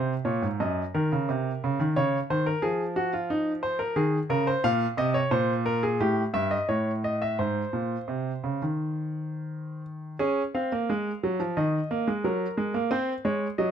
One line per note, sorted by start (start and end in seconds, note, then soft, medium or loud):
0.00 0.13 C3 medium
0.00 0.13 C5 medium
0.25 0.42 A#2 medium
0.25 0.46 C#5 medium
0.42 0.59 G#2 medium
0.60 0.81 F#2 medium
0.60 0.81 D#5 medium
0.94 1.11 D#3 medium
0.94 1.93 A#4 medium
1.12 1.28 C#3 medium
1.29 1.50 C3 medium
1.64 1.79 C#3 medium
1.80 1.95 D#3 medium
1.96 2.17 C#3 medium
1.96 2.17 C#5 medium
2.30 2.51 D#3 medium
2.30 2.46 C5 medium
2.46 2.62 A#4 medium
2.62 3.92 F3 medium
2.62 2.83 G#4 medium
2.96 3.12 F#4 medium
3.13 3.29 F4 medium
3.30 3.51 D#4 medium
3.63 3.79 C5 medium
3.79 3.96 A#4 medium
3.96 4.17 D#3 medium
3.96 4.17 G#4 medium
4.30 4.51 C#3 medium
4.30 4.46 A#4 medium
4.47 4.63 C5 medium
4.64 4.85 A#2 medium
4.64 4.85 F5 loud
4.97 5.18 C3 medium
4.97 5.14 D#5 medium
5.14 5.31 C#5 medium
5.31 5.97 A#2 medium
5.31 5.52 C5 medium
5.66 5.82 A#4 medium
5.83 5.99 G#4 medium
6.00 6.21 A2 medium
6.00 6.21 G4 medium
6.34 6.55 G2 medium
6.34 6.50 E5 medium
6.51 6.68 D#5 medium
6.68 7.36 A2 medium
6.68 6.90 C#5 medium
7.04 7.21 D#5 medium
7.22 7.38 E5 medium
7.39 7.61 G#2 medium
7.39 9.81 C5 medium
7.73 7.95 A#2 medium
8.08 8.30 C3 medium
8.44 8.61 C#3 medium
8.62 10.16 D#3 medium
10.19 10.41 C#4 medium
10.19 10.41 G#4 medium
10.55 10.71 C4 medium
10.55 11.53 F5 medium
10.72 10.88 A#3 medium
10.90 11.10 G#3 medium
11.23 11.39 F#3 medium
11.40 11.56 F3 medium
11.57 11.78 D#3 medium
11.57 12.22 D#5 medium
11.91 12.07 A#3 medium
12.08 12.24 G#3 medium
12.24 12.45 F#3 medium
12.24 12.90 A#4 medium
12.57 12.74 G#3 medium
12.74 12.91 A#3 medium
12.91 13.12 C4 medium
12.91 13.12 C5 medium
13.25 13.46 G#3 medium
13.25 13.46 C#5 medium
13.58 13.71 F#3 medium
13.58 13.71 D#5 medium